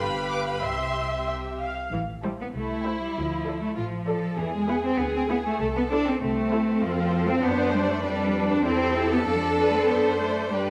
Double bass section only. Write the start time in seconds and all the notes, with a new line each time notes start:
0.00 G1
0.63 C2
1.92 A1
2.55 C2
3.16 D2
3.77 A1
4.38 E2
4.99 D2
5.60 C2
6.21 C2
6.81 F2
7.43 F#2
8.04 F2
8.64 E2
9.26 F2
9.89 F#2
10.53 G2